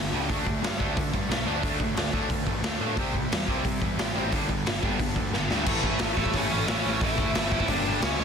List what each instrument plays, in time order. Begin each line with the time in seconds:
Already playing: overdriven electric guitar G2 D3
0.12 picked electric bass C#2, overdriven electric guitar G2 D3 G3
0.29 picked electric bass D2, overdriven electric guitar D3 A3 D4, distorted electric guitar F#3, kick, open hi-hat
0.46 overdriven electric guitar D3 A3, kick
0.62 picked electric bass G2, overdriven electric guitar D3 A3, snare, open hi-hat
0.79 picked electric bass D2, overdriven electric guitar D3 A3 D4, distorted electric guitar F#3, kick
0.96 overdriven electric guitar D3 A3, picked electric bass D3, kick, open hi-hat
1.12 picked electric bass G2, overdriven electric guitar D3 A3, kick
1.29 picked electric bass B1, overdriven electric guitar D3 A3, distorted electric guitar F#3 D4, snare, open hi-hat
1.45 picked electric bass D2, overdriven electric guitar D3 A3 D4
1.63 picked electric bass D2, overdriven electric guitar D3 A3 D4, distorted electric guitar F#3, kick, open hi-hat
1.80 picked electric bass D2, overdriven electric guitar D3 A3, kick
1.95 picked electric bass D2, overdriven electric guitar D3 A3, snare, open hi-hat
2.13 picked electric bass D2, overdriven electric guitar D3 A3 D4, distorted electric guitar F#3, kick
2.30 picked electric bass D2, overdriven electric guitar D3 A3, kick, open hi-hat
2.47 picked electric bass A1, overdriven electric guitar D3 A3, kick
2.63 picked electric bass D2, overdriven electric guitar D3 A3, distorted electric guitar F#3 D4, snare, open hi-hat
2.80 picked electric bass A2, overdriven electric guitar D3 A3 D4
2.97 picked electric bass C2, overdriven electric guitar C3 G3 C4, distorted electric guitar E4, kick, open hi-hat
3.14 overdriven electric guitar C3 G3, kick
3.31 picked electric bass E2, overdriven electric guitar C3 G3, snare, open hi-hat
3.47 picked electric bass C2, overdriven electric guitar C3 G3 C4, distorted electric guitar E4, kick
3.64 overdriven electric guitar C3 G3, picked electric bass C3, kick, open hi-hat
3.82 picked electric bass E2, overdriven electric guitar C3 G3, kick
3.98 picked electric bass A1, overdriven electric guitar C3 G3, distorted electric guitar C4 E4, snare, open hi-hat
4.15 picked electric bass A1, overdriven electric guitar C3 G3 C4
4.31 picked electric bass G1, overdriven electric guitar G2 D3 G3, distorted electric guitar B3 D4, kick, open hi-hat
4.49 picked electric bass G1, overdriven electric guitar G2 D3, kick
4.66 picked electric bass G1, overdriven electric guitar G2 D3, snare, open hi-hat
4.82 picked electric bass G1, overdriven electric guitar G2 D3 G3, distorted electric guitar B3 D4, kick
4.99 picked electric bass G1, overdriven electric guitar G2 D3, kick, open hi-hat
5.16 picked electric bass D2, overdriven electric guitar G2 D3, kick
5.32 picked electric bass G1, overdriven electric guitar G2 D3, distorted electric guitar G3 B3 D4, snare
5.48 picked electric bass D2, overdriven electric guitar G2 D3 G3, snare
5.66 picked electric bass A1, overdriven electric guitar A2 E3 A3, distorted electric guitar C#4 E4 A4 C#5, kick, crash
5.83 overdriven electric guitar A2 E3 A3, kick
5.99 picked electric bass A1, overdriven electric guitar A2 E3 A3, snare, open hi-hat
6.17 picked electric bass A1, overdriven electric guitar A2 E3 A3, lead electric guitar A3 A4, distorted electric guitar C#4 E4 A4 C#5, kick
6.26 kick
6.33 picked electric bass A1, overdriven electric guitar A2 E3 A3, lead electric guitar C#4 C#5, kick, open hi-hat
6.50 picked electric bass A1, overdriven electric guitar A2 E3 A3
6.67 picked electric bass A1, overdriven electric guitar A2 E3 A3, lead electric guitar C#4 C#5, snare, open hi-hat
6.84 picked electric bass A1, overdriven electric guitar A2 E3 A3
7.00 picked electric bass A1, overdriven electric guitar A2 E3 A3, distorted electric guitar C#4 E4 A4 C#5, lead electric guitar E4 E5, kick, open hi-hat
7.17 picked electric bass D2, overdriven electric guitar A2 E3 A3, kick
7.33 picked electric bass G1, overdriven electric guitar A2 E3 A3, snare, open hi-hat
7.51 overdriven electric guitar A2 E3 A3, distorted electric guitar C#4 E4 A4 C#5, lead electric guitar E4 E5, kick
7.60 kick
7.68 picked electric bass G1, overdriven electric guitar G2 D3 G3, distorted electric guitar D4 G4 D5, lead electric guitar D4 D5, kick, open hi-hat
7.85 overdriven electric guitar G2 D3 G3
8.01 picked electric bass C#2, overdriven electric guitar C#3 G#3 C#4, lead electric guitar C#4 C#5, distorted electric guitar G#4, snare, open hi-hat
8.18 picked electric bass C#2, overdriven electric guitar C#3 G#3 C#4